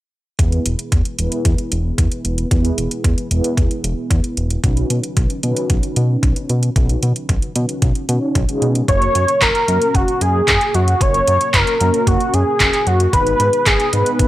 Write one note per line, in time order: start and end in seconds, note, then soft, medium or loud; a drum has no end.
0.39 0.59 E2 loud
0.39 1.16 B3 medium
0.39 1.16 E4 medium
0.39 1.15 G#4 medium
0.39 1.16 B4 medium
0.39 kick loud
0.39 closed hi-hat medium
0.52 closed hi-hat soft
0.66 0.76 E1 medium
0.66 closed hi-hat medium
0.79 closed hi-hat soft
0.92 1.02 E2 medium
0.92 kick loud
0.92 closed hi-hat medium
1.05 closed hi-hat soft
1.19 1.29 E1 medium
1.19 2.48 B3 medium
1.19 2.48 E4 medium
1.19 2.48 G#4 medium
1.19 2.48 B4 medium
1.19 closed hi-hat medium
1.32 closed hi-hat soft
1.45 1.55 E2 medium
1.45 kick loud
1.45 closed hi-hat medium
1.58 closed hi-hat soft
1.72 1.92 E1 medium
1.72 closed hi-hat medium
1.98 2.08 E2 medium
1.98 kick medium
1.98 closed hi-hat medium
2.12 closed hi-hat soft
2.25 2.45 E1 medium
2.25 closed hi-hat soft
2.38 closed hi-hat soft
2.51 2.72 E2 loud
2.51 3.28 B3 medium
2.51 3.28 E4 medium
2.51 3.28 G#4 medium
2.51 3.28 B4 medium
2.51 kick loud
2.51 closed hi-hat medium
2.65 closed hi-hat soft
2.78 2.88 E1 medium
2.78 closed hi-hat medium
2.91 closed hi-hat soft
3.04 3.15 E2 medium
3.04 kick loud
3.04 closed hi-hat medium
3.18 closed hi-hat soft
3.31 3.41 E1 medium
3.31 4.61 B3 medium
3.31 4.61 E4 medium
3.31 4.61 G#4 medium
3.31 4.61 B4 medium
3.31 closed hi-hat medium
3.44 closed hi-hat soft
3.57 3.68 E2 medium
3.57 kick loud
3.57 closed hi-hat medium
3.71 closed hi-hat soft
3.84 3.94 E1 loud
3.84 closed hi-hat medium
4.11 4.21 E2 loud
4.11 kick loud
4.11 closed hi-hat medium
4.24 closed hi-hat soft
4.37 4.58 E1 medium
4.37 closed hi-hat soft
4.50 closed hi-hat soft
4.64 4.84 B1 loud
4.64 5.40 C#4 medium
4.64 5.40 D#4 medium
4.64 5.40 F#4 medium
4.64 5.40 B4 medium
4.64 kick loud
4.64 closed hi-hat medium
4.77 closed hi-hat soft
4.90 5.00 B2 medium
4.90 closed hi-hat medium
5.03 closed hi-hat soft
5.17 5.27 B1 medium
5.17 kick loud
5.17 closed hi-hat medium
5.30 closed hi-hat soft
5.43 5.54 B2 medium
5.43 6.73 C#4 medium
5.43 6.73 D#4 medium
5.43 6.73 F#4 medium
5.43 6.73 B4 medium
5.43 closed hi-hat medium
5.56 closed hi-hat soft
5.70 5.80 B1 loud
5.70 kick loud
5.70 closed hi-hat medium
5.83 closed hi-hat soft
5.96 6.17 B2 loud
5.96 closed hi-hat medium
6.23 6.33 B1 medium
6.23 kick loud
6.23 closed hi-hat medium
6.36 closed hi-hat soft
6.49 6.70 B2 medium
6.49 closed hi-hat soft
6.63 closed hi-hat soft
6.76 6.96 B1 loud
6.76 7.53 C#4 medium
6.76 7.53 D#4 medium
6.76 7.53 F#4 medium
6.76 7.53 B4 medium
6.76 kick loud
6.76 closed hi-hat medium
6.89 closed hi-hat soft
7.03 7.13 B2 medium
7.03 closed hi-hat medium
7.16 closed hi-hat soft
7.29 7.39 B1 medium
7.29 kick loud
7.29 closed hi-hat medium
7.42 closed hi-hat soft
7.56 7.66 B2 medium
7.56 8.06 C#4 medium
7.56 8.06 D#4 medium
7.56 closed hi-hat medium
7.69 closed hi-hat soft
7.82 7.92 B1 medium
7.82 kick loud
7.82 closed hi-hat medium
7.95 closed hi-hat soft
8.09 8.19 B2 medium
8.09 8.45 C#4 medium
8.09 8.45 D#4 medium
8.09 8.45 F#4 medium
8.09 8.45 C#5 medium
8.09 closed hi-hat medium
8.35 8.46 B1 medium
8.35 kick loud
8.35 closed hi-hat medium
8.49 8.85 C#4 medium
8.49 8.85 D#4 medium
8.49 8.85 F#4 medium
8.49 8.85 G#4 loud
8.49 closed hi-hat soft
8.62 8.82 B2 medium
8.62 closed hi-hat soft
8.75 closed hi-hat soft
8.88 9.09 F#1 loud
8.88 9.43 C#5 loud
8.88 kick loud
8.88 closed hi-hat medium
9.02 closed hi-hat soft
9.15 9.25 F#2 medium
9.15 closed hi-hat medium
9.28 closed hi-hat soft
9.41 9.52 F#1 medium
9.41 9.96 A#4 loud
9.41 kick loud
9.41 clap loud
9.41 closed hi-hat medium
9.55 closed hi-hat soft
9.68 9.78 F#2 medium
9.68 10.98 A#3 medium
9.68 10.98 C#4 medium
9.68 10.98 F#4 medium
9.68 10.98 A#4 medium
9.68 closed hi-hat medium
9.82 closed hi-hat soft
9.95 10.05 F#1 loud
9.95 10.23 F#4 loud
9.95 kick loud
9.95 closed hi-hat medium
10.08 closed hi-hat soft
10.21 10.42 F#2 loud
10.21 10.76 G#4 loud
10.21 closed hi-hat medium
10.48 10.58 F#1 medium
10.48 kick loud
10.48 clap loud
10.48 closed hi-hat medium
10.61 closed hi-hat soft
10.74 10.95 F#2 medium
10.74 11.03 F#4 loud
10.74 closed hi-hat soft
10.88 closed hi-hat soft
11.01 11.21 F#1 loud
11.01 11.77 A#3 medium
11.01 11.77 C#4 medium
11.01 11.77 F#4 medium
11.01 11.77 A#4 medium
11.01 11.56 C#5 loud
11.01 kick loud
11.01 closed hi-hat medium
11.14 closed hi-hat soft
11.28 11.38 F#2 medium
11.28 closed hi-hat medium
11.41 closed hi-hat soft
11.54 11.64 F#1 medium
11.54 12.09 A#4 loud
11.54 kick loud
11.54 clap loud
11.54 closed hi-hat medium
11.67 closed hi-hat soft
11.80 11.91 F#2 medium
11.80 13.10 A#3 medium
11.80 13.10 C#4 medium
11.80 13.10 F#4 medium
11.80 closed hi-hat medium
11.94 closed hi-hat soft
12.07 12.17 F#1 medium
12.07 12.35 F#4 medium
12.07 kick loud
12.07 closed hi-hat medium
12.20 closed hi-hat soft
12.34 12.44 F#2 loud
12.34 12.88 G#4 loud
12.34 closed hi-hat medium
12.60 12.70 F#1 loud
12.60 kick medium
12.60 clap loud
12.60 closed hi-hat medium
12.73 clap soft
12.73 closed hi-hat soft
12.87 13.07 F#2 medium
12.87 13.13 F#4 medium
12.87 closed hi-hat soft
13.00 closed hi-hat soft
13.13 13.34 G#1 loud
13.13 13.90 B3 medium
13.13 13.90 D#4 medium
13.13 13.90 G#4 medium
13.13 13.90 B4 medium
13.13 13.68 B4 loud
13.13 kick loud
13.13 closed hi-hat medium
13.27 closed hi-hat soft
13.40 13.50 G#2 medium
13.40 closed hi-hat medium
13.53 closed hi-hat soft
13.66 13.77 G#1 medium
13.66 13.94 G#4 medium
13.66 kick loud
13.66 clap loud
13.66 closed hi-hat medium
13.80 closed hi-hat soft
13.93 14.03 G#2 medium
13.93 14.28 B3 medium
13.93 14.28 D#4 medium
13.93 14.28 G#4 medium
13.93 14.28 B4 medium
13.93 closed hi-hat medium
14.06 closed hi-hat soft
14.19 14.28 G#1 medium
14.19 kick loud
14.19 closed hi-hat medium